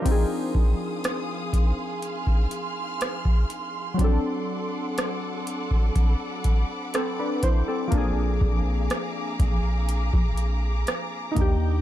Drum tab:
CC |x---------------|----------------|----------------|
HH |x---x-x-x-x-x-x-|x---x-x-x-x-x-x-|x---x-x-x-x-x-x-|
SD |----r-------r---|----r-------r---|----r-------r---|
BD |o-o---o--o---o--|o------oo-o---o-|o-o---o--o----o-|